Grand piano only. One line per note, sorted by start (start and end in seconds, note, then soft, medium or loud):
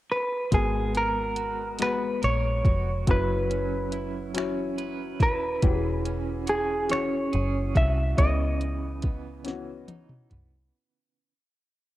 0.52 1.70 G#3 medium
0.52 1.71 B3 medium
0.52 1.70 F#4 medium
0.52 1.71 A#4 medium
1.79 2.97 G#3 medium
1.79 2.99 B3 medium
1.79 2.98 F#4 soft
1.79 2.98 G#4 medium
3.07 4.25 F#3 medium
3.07 4.26 C#4 medium
3.07 4.26 E4 medium
3.07 4.26 B4 medium
4.34 5.52 F#3 medium
4.34 5.53 C#4 medium
4.34 5.53 E4 medium
4.34 5.54 C#5 medium
5.62 6.80 E3 medium
5.62 6.81 C#4 medium
5.62 6.81 F#4 medium
5.62 5.71 G4 medium
5.72 6.85 G#4 medium
6.89 8.07 E3 medium
6.89 8.08 C#4 soft
6.89 8.09 F#4 soft
6.89 8.09 G#4 medium
8.17 9.35 C#3 medium
8.17 9.36 B3 medium
8.17 9.36 E4 medium
8.17 9.37 D#5 medium
9.44 10.64 E3 medium
9.44 10.63 B3 medium
9.44 10.63 C#4 medium
9.44 10.64 F#4 medium